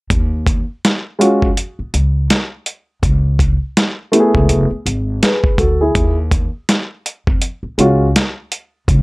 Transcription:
0.10 upright bass D#2, kick, closed hi-hat
0.47 kick, closed hi-hat
0.85 snare, closed hi-hat
1.19 grand piano G#3 C#4 F4 F#4, closed hi-hat
1.42 upright bass F2, kick
1.57 closed hi-hat
1.79 muted upright bass stroke
1.94 upright bass C#2, closed hi-hat
2.30 snare, closed hi-hat
2.66 closed hi-hat
3.02 upright bass C#2, kick, closed hi-hat
3.39 kick, closed hi-hat
3.77 snare, closed hi-hat
4.12 grand piano A3 B3 E4 G4, closed hi-hat
4.20 grand piano G#4
4.34 upright bass C#2, kick
4.49 upright bass F#1, closed hi-hat
4.70 muted upright bass stroke
4.86 upright bass G#1, closed hi-hat
5.22 grand piano G#4 B4, snare, closed hi-hat
5.44 kick
5.58 upright bass D2, grand piano F#4 A4, kick, closed hi-hat
5.81 grand piano E4 G#4
5.95 upright bass D#2, kick, closed hi-hat
6.31 kick, closed hi-hat
6.69 snare, closed hi-hat
7.06 closed hi-hat
7.27 upright bass F2, kick
7.42 closed hi-hat
7.63 muted upright bass stroke
7.78 upright bass C#2, grand piano G#3 C#4 F4 F#4, closed hi-hat
8.16 snare, closed hi-hat
8.52 closed hi-hat
8.88 upright bass C#2, kick, closed hi-hat

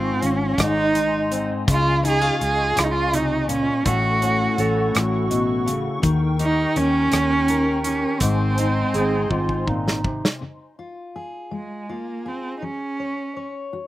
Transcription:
Already playing: fingered electric bass G#1, steel-string acoustic guitar G#2 F4, cello C4, analog synth pad F4 F5 G#5 C#6
0.21 fingered electric bass G#1, steel-string acoustic guitar C#4, closed hi-hat
0.26 cello C#4
0.58 fingered electric bass G#1, steel-string acoustic guitar G#2, analog synth pad D#4 D#5 G#5 C6, kick, cross-stick, closed hi-hat
0.62 cello D#4
0.94 steel-string acoustic guitar D#4, closed hi-hat
1.31 steel-string acoustic guitar C4, closed hi-hat
1.66 fingered electric bass C#2, steel-string acoustic guitar C#3, analog synth pad F4 C#6, cello F4, kick, closed hi-hat
2.03 steel-string acoustic guitar D#4, cello G#4, closed hi-hat
2.21 steel-string acoustic guitar F4
2.41 fingered electric bass C#2, cello G#4, closed hi-hat
2.76 fingered electric bass C#2, steel-string acoustic guitar C#3, cello F4, cross-stick, closed hi-hat
2.84 cello D#4
2.91 cello F4
3.13 steel-string acoustic guitar C3, cello D#4, closed hi-hat
3.48 steel-string acoustic guitar A#2, cello C#4, closed hi-hat
3.85 fingered electric bass A1, steel-string acoustic guitar A2 A3 C#4, analog synth pad E4 A4 F#5, cello F#4, kick, closed hi-hat
4.22 steel-string acoustic guitar C#4, closed hi-hat
4.58 fingered electric bass A1, steel-string acoustic guitar C#4, clarinet A4, closed hi-hat
4.94 fingered electric bass A1, steel-string acoustic guitar A2, clarinet F#4, cross-stick, closed hi-hat
5.30 steel-string acoustic guitar B2, closed hi-hat
5.66 steel-string acoustic guitar C#3, closed hi-hat
6.02 fingered electric bass D#2, steel-string acoustic guitar D#3, analog synth pad D#4 A#4 G5, kick, closed hi-hat
6.39 cello D#4, steel-string acoustic guitar G4, closed hi-hat
6.76 fingered electric bass D#2, cello C#4, steel-string acoustic guitar C#4, closed hi-hat
7.12 fingered electric bass D#2, steel-string acoustic guitar G4, cross-stick, closed hi-hat
7.48 steel-string acoustic guitar A#4, closed hi-hat
7.83 cello C#4, steel-string acoustic guitar G4, closed hi-hat
8.20 fingered electric bass G#1, steel-string acoustic guitar G#2, cello C4, analog synth pad D#4 C5 G#5 C6, kick, closed hi-hat
8.58 steel-string acoustic guitar D#4, closed hi-hat
8.94 fingered electric bass G#1, steel-string acoustic guitar C4, clarinet G#4, closed hi-hat
9.30 fingered electric bass G#1, steel-string acoustic guitar G#2, clarinet F4, kick
9.49 kick
9.67 steel-string acoustic guitar A#2, clarinet D#4, kick
9.88 snare
10.04 steel-string acoustic guitar C3, kick
10.25 snare
10.42 steel-string acoustic guitar C#3
10.79 steel-string acoustic guitar F4
11.16 steel-string acoustic guitar G#4
11.51 steel-string acoustic guitar G#3, cello G#3
11.89 cello A#3, steel-string acoustic guitar F4
12.26 cello C4, steel-string acoustic guitar G#4
12.59 steel-string acoustic guitar F#3, cello D#4
12.64 cello C#4
13.00 steel-string acoustic guitar C#5
13.37 steel-string acoustic guitar C#5
13.73 steel-string acoustic guitar F#4

